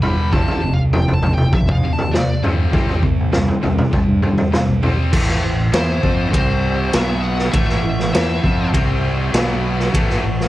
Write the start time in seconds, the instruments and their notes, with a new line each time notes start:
Already playing: fingered electric bass G1
0.03 distorted electric guitar G2 D3 G3, lead electric guitar B5, floor tom
0.32 fingered electric bass F1, distorted electric guitar F2 C3 F3, lead electric guitar A5, kick, floor tom
0.48 floor tom
0.52 lead electric guitar A5
0.63 fingered electric bass F1, distorted electric guitar F2 C3
0.73 lead electric guitar F5
0.78 fingered electric bass C2
0.93 fingered electric bass F1, distorted electric guitar F2 C3, lead electric guitar G5, floor tom
1.08 floor tom
1.14 lead electric guitar A5
1.23 fingered electric bass A1, distorted electric guitar F2 C3, floor tom, mid tom
1.34 lead electric guitar G5, floor tom
1.39 fingered electric bass F1
1.53 distorted electric guitar F2 C3, lead electric guitar E5, kick, floor tom
1.69 fingered electric bass D2, lead electric guitar F5
1.84 distorted electric guitar F2 C3
1.93 lead electric guitar A5
1.98 floor tom
2.11 distorted electric guitar F2 C3, lead electric guitar D5, snare
2.43 distorted electric guitar F2 C3 F3, fingered electric bass G2, floor tom
2.73 fingered electric bass C2, distorted electric guitar C3 G3 C4, kick, floor tom
2.89 floor tom
3.03 fingered electric bass C2, distorted electric guitar C3 G3, kick
3.20 fingered electric bass A1
3.33 fingered electric bass C2, distorted electric guitar C3 G3, snare, floor tom
3.48 floor tom
3.63 fingered electric bass C2, distorted electric guitar C3 G3, floor tom
3.78 fingered electric bass C3, floor tom, mid tom
3.93 distorted electric guitar C3 G3, kick, floor tom
4.09 fingered electric bass G2
4.23 distorted electric guitar C3 G3, floor tom
4.38 floor tom
4.52 distorted electric guitar C3 G3, snare, mid tom
4.68 fingered electric bass B1
4.83 distorted electric guitar C3 G3 C4, floor tom
5.13 fingered electric bass A1, distorted electric guitar A2 E3 A3, string machine E4 C5 A5 C6, kick, crash
5.29 snare
5.43 fingered electric bass A1, distorted electric guitar A2 E3
5.73 fingered electric bass E2, distorted electric guitar E3 B3 E4, lead electric guitar C5, snare, ride bell
6.02 fingered electric bass F2, distorted electric guitar F3 C4 F4, kick
6.33 fingered electric bass C2, distorted electric guitar C3 G3 C4, string machine C4 G4 G5, lead electric guitar C5, kick, ride bell
6.93 fingered electric bass B1, distorted electric guitar B2 F#3 B3, string machine B3 F#4 F#5 B5, lead electric guitar E5, snare, ride bell
7.23 lead electric guitar F#5
7.39 snare
7.52 fingered electric bass A1, distorted electric guitar A2 E3 A3, string machine E4 C6, lead electric guitar E5, kick, ride bell
7.56 string machine C5 A5
7.69 snare
7.84 fingered electric bass A1, distorted electric guitar A2 E3
8.00 snare
8.14 fingered electric bass E2, distorted electric guitar E3 B3 E4, snare, ride bell
8.42 fingered electric bass F2, distorted electric guitar F3 C4 F4, kick
8.72 fingered electric bass C2, distorted electric guitar C3 G3 C4, string machine C4 G4 G5 C6, kick, ride bell
9.32 fingered electric bass B1, distorted electric guitar B2 F#3 B3, string machine B3 F#5 B5, snare, ride bell
9.36 string machine F#4
9.79 snare
9.93 fingered electric bass A1, distorted electric guitar A2 E3 A3, string machine E4 C6, kick, ride bell
9.97 string machine C5 A5
10.10 snare
10.24 fingered electric bass A1, distorted electric guitar A2 E3
10.40 snare